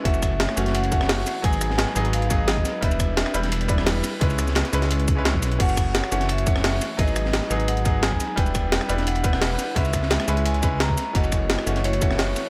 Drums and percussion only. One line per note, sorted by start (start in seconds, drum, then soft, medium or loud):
0.05 kick loud
0.05 closed hi-hat medium
0.05 ride medium
0.14 ride soft
0.14 shaker soft
0.23 kick medium
0.23 cross-stick soft
0.23 closed hi-hat medium
0.23 ride medium
0.23 shaker medium
0.40 snare loud
0.40 closed hi-hat medium
0.40 ride medium
0.49 cross-stick medium
0.49 snare soft
0.57 closed hi-hat medium
0.57 ride medium
0.57 shaker medium
0.66 snare soft
0.66 closed hi-hat soft
0.75 closed hi-hat medium
0.75 ride medium
0.84 closed hi-hat soft
0.84 ride soft
0.92 kick loud
0.92 closed hi-hat medium
0.92 ride medium
0.92 shaker medium
1.01 cross-stick medium
1.01 snare medium
1.09 snare loud
1.09 closed hi-hat medium
1.09 open hi-hat medium
1.26 snare soft
1.26 closed hi-hat medium
1.26 ride medium
1.26 shaker medium
1.44 kick loud
1.44 closed hi-hat medium
1.44 ride medium
1.53 ride soft
1.53 shaker soft
1.61 cross-stick soft
1.61 closed hi-hat medium
1.61 ride medium
1.61 shaker medium
1.70 snare soft
1.78 snare loud
1.78 closed hi-hat medium
1.78 ride medium
1.86 snare medium
1.96 closed hi-hat medium
1.96 ride medium
1.96 shaker medium
2.05 closed hi-hat soft
2.13 closed hi-hat medium
2.13 ride loud
2.22 closed hi-hat soft
2.31 kick loud
2.31 closed hi-hat medium
2.31 ride medium
2.31 shaker medium
2.48 snare loud
2.48 closed hi-hat loud
2.48 ride medium
2.57 kick medium
2.65 snare soft
2.65 closed hi-hat medium
2.65 ride medium
2.65 shaker medium
2.82 kick loud
2.82 closed hi-hat loud
2.82 ride medium
2.91 ride soft
2.91 shaker soft
3.00 kick medium
3.00 cross-stick soft
3.00 closed hi-hat medium
3.00 ride medium
3.00 shaker medium
3.17 snare loud
3.17 closed hi-hat loud
3.17 ride loud
3.26 cross-stick medium
3.26 snare soft
3.34 closed hi-hat medium
3.34 ride medium
3.34 shaker medium
3.43 snare soft
3.43 closed hi-hat soft
3.52 closed hi-hat medium
3.52 ride loud
3.61 closed hi-hat soft
3.61 ride soft
3.68 kick loud
3.68 closed hi-hat medium
3.68 ride medium
3.68 shaker medium
3.78 cross-stick medium
3.78 snare medium
3.86 snare loud
3.86 closed hi-hat loud
3.86 open hi-hat medium
4.04 snare soft
4.04 closed hi-hat medium
4.04 ride medium
4.04 shaker medium
4.21 kick loud
4.21 closed hi-hat loud
4.21 ride medium
4.30 ride soft
4.30 shaker soft
4.39 cross-stick soft
4.39 closed hi-hat medium
4.39 ride medium
4.39 shaker medium
4.48 snare soft
4.48 shaker soft
4.55 snare loud
4.55 closed hi-hat loud
4.55 ride medium
4.65 snare medium
4.65 closed hi-hat soft
4.73 closed hi-hat medium
4.73 ride medium
4.73 shaker medium
4.82 snare soft
4.82 closed hi-hat soft
4.91 closed hi-hat medium
4.91 ride medium
5.00 closed hi-hat soft
5.08 kick loud
5.08 closed hi-hat medium
5.08 ride medium
5.08 shaker medium
5.25 snare loud
5.25 closed hi-hat loud
5.25 ride medium
5.34 kick medium
5.42 snare soft
5.42 closed hi-hat medium
5.42 ride medium
5.42 shaker medium
5.52 closed hi-hat soft
5.60 kick loud
5.60 closed hi-hat loud
5.60 crash medium
5.60 ride medium
5.69 ride soft
5.69 shaker soft
5.77 kick medium
5.77 cross-stick medium
5.77 closed hi-hat medium
5.77 ride medium
5.77 shaker medium
5.95 snare loud
5.95 closed hi-hat loud
5.95 ride medium
6.04 cross-stick medium
6.04 snare soft
6.12 closed hi-hat medium
6.12 ride medium
6.12 shaker medium
6.20 snare soft
6.20 closed hi-hat soft
6.29 closed hi-hat medium
6.29 ride medium
6.38 closed hi-hat soft
6.38 ride soft
6.47 kick loud
6.47 closed hi-hat medium
6.47 ride medium
6.47 shaker medium
6.56 cross-stick medium
6.56 snare soft
6.64 snare loud
6.64 closed hi-hat loud
6.64 open hi-hat medium
6.81 snare soft
6.81 closed hi-hat medium
6.81 ride medium
6.81 shaker medium
6.99 kick loud
6.99 closed hi-hat medium
6.99 ride medium
7.07 ride soft
7.07 shaker soft
7.16 cross-stick medium
7.16 closed hi-hat medium
7.16 ride medium
7.16 shaker medium
7.25 snare soft
7.33 snare loud
7.33 closed hi-hat medium
7.33 ride medium
7.42 snare medium
7.51 closed hi-hat medium
7.51 ride medium
7.51 shaker medium
7.60 closed hi-hat soft
7.68 closed hi-hat medium
7.68 ride medium
7.77 closed hi-hat soft
7.85 kick loud
7.85 closed hi-hat medium
7.85 ride medium
7.85 shaker medium
8.03 snare loud
8.03 closed hi-hat loud
8.03 ride medium
8.12 kick medium
8.20 snare soft
8.20 closed hi-hat medium
8.20 ride medium
8.20 shaker medium
8.37 kick loud
8.37 closed hi-hat medium
8.37 ride medium
8.46 ride soft
8.46 shaker soft
8.55 kick medium
8.55 cross-stick soft
8.55 closed hi-hat medium
8.55 ride medium
8.55 shaker medium
8.72 snare loud
8.72 closed hi-hat medium
8.72 ride medium
8.81 cross-stick medium
8.81 snare soft
8.89 closed hi-hat medium
8.89 ride medium
8.89 shaker medium
8.98 snare soft
8.98 closed hi-hat soft
9.07 closed hi-hat medium
9.07 ride medium
9.15 closed hi-hat soft
9.15 ride soft
9.24 kick loud
9.24 closed hi-hat medium
9.24 ride medium
9.24 shaker medium
9.33 cross-stick medium
9.33 snare medium
9.41 snare loud
9.41 closed hi-hat medium
9.41 open hi-hat medium
9.58 snare soft
9.58 closed hi-hat medium
9.58 ride medium
9.58 shaker medium
9.76 kick loud
9.76 closed hi-hat medium
9.76 ride medium
9.85 ride soft
9.85 shaker soft
9.93 kick medium
9.93 cross-stick soft
9.93 closed hi-hat medium
9.93 ride medium
9.93 shaker medium
10.02 snare soft
10.10 snare loud
10.10 closed hi-hat medium
10.10 ride medium
10.20 cross-stick medium
10.20 snare medium
10.20 closed hi-hat soft
10.28 closed hi-hat medium
10.28 ride medium
10.28 shaker medium
10.37 closed hi-hat soft
10.46 closed hi-hat medium
10.46 ride medium
10.54 closed hi-hat soft
10.63 kick loud
10.63 closed hi-hat medium
10.63 ride medium
10.63 shaker medium
10.80 snare loud
10.80 closed hi-hat medium
10.80 ride medium
10.89 kick medium
10.98 snare soft
10.98 closed hi-hat medium
10.98 ride medium
10.98 shaker medium
11.15 kick loud
11.15 closed hi-hat medium
11.15 ride medium
11.24 ride soft
11.24 shaker soft
11.32 kick medium
11.32 cross-stick soft
11.32 closed hi-hat medium
11.32 ride medium
11.32 shaker medium
11.50 snare loud
11.50 closed hi-hat medium
11.50 ride medium
11.59 cross-stick medium
11.59 snare soft
11.67 closed hi-hat medium
11.67 ride medium
11.67 shaker medium
11.76 snare soft
11.76 closed hi-hat soft
11.84 closed hi-hat medium
11.84 ride medium
11.93 closed hi-hat soft
11.93 ride soft
12.02 kick loud
12.02 closed hi-hat medium
12.02 ride medium
12.02 shaker medium
12.11 cross-stick medium
12.11 snare medium
12.18 snare loud
12.18 closed hi-hat medium
12.18 open hi-hat medium
12.36 snare soft
12.36 closed hi-hat medium
12.36 ride medium
12.36 shaker medium